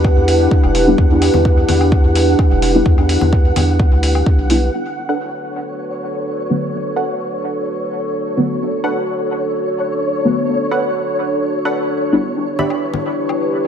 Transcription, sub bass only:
0, 0, Header, 1, 2, 480
1, 0, Start_track
1, 0, Key_signature, 2, "minor"
1, 0, Tempo, 468750
1, 1007, Time_signature, 4, 2, 24, 8
1, 14002, End_track
2, 0, Start_track
2, 0, Title_t, "Sub bass"
2, 0, Program_c, 0, 38
2, 0, Note_on_c, 0, 40, 83
2, 130, Note_off_c, 0, 40, 0
2, 171, Note_on_c, 0, 40, 97
2, 489, Note_off_c, 0, 40, 0
2, 651, Note_on_c, 0, 28, 102
2, 968, Note_off_c, 0, 28, 0
2, 1006, Note_on_c, 0, 40, 97
2, 1330, Note_off_c, 0, 40, 0
2, 1371, Note_on_c, 0, 40, 91
2, 1689, Note_off_c, 0, 40, 0
2, 1726, Note_on_c, 0, 40, 85
2, 2050, Note_off_c, 0, 40, 0
2, 2091, Note_on_c, 0, 40, 100
2, 2408, Note_off_c, 0, 40, 0
2, 2571, Note_on_c, 0, 28, 105
2, 2888, Note_off_c, 0, 28, 0
2, 2926, Note_on_c, 0, 40, 104
2, 3250, Note_off_c, 0, 40, 0
2, 3291, Note_on_c, 0, 40, 94
2, 3608, Note_off_c, 0, 40, 0
2, 3647, Note_on_c, 0, 40, 83
2, 3970, Note_off_c, 0, 40, 0
2, 4011, Note_on_c, 0, 38, 90
2, 4329, Note_off_c, 0, 38, 0
2, 4491, Note_on_c, 0, 35, 91
2, 4809, Note_off_c, 0, 35, 0
2, 14002, End_track
0, 0, End_of_file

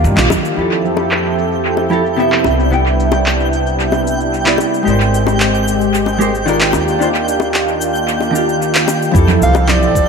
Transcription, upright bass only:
0, 0, Header, 1, 2, 480
1, 0, Start_track
1, 0, Tempo, 535714
1, 518, Time_signature, 4, 2, 24, 8
1, 9037, End_track
2, 0, Start_track
2, 0, Title_t, "Upright bass"
2, 0, Program_c, 0, 32
2, 36, Note_on_c, 0, 43, 113
2, 129, Note_off_c, 0, 43, 0
2, 157, Note_on_c, 0, 34, 82
2, 248, Note_off_c, 0, 34, 0
2, 516, Note_on_c, 0, 41, 68
2, 2173, Note_off_c, 0, 41, 0
2, 2197, Note_on_c, 0, 36, 82
2, 4094, Note_off_c, 0, 36, 0
2, 4357, Note_on_c, 0, 32, 69
2, 6013, Note_off_c, 0, 32, 0
2, 6034, Note_on_c, 0, 39, 77
2, 7932, Note_off_c, 0, 39, 0
2, 8196, Note_on_c, 0, 41, 91
2, 8379, Note_off_c, 0, 41, 0
2, 8436, Note_on_c, 0, 36, 75
2, 8918, Note_off_c, 0, 36, 0
2, 8918, Note_on_c, 0, 29, 80
2, 9037, Note_off_c, 0, 29, 0
2, 9037, End_track
0, 0, End_of_file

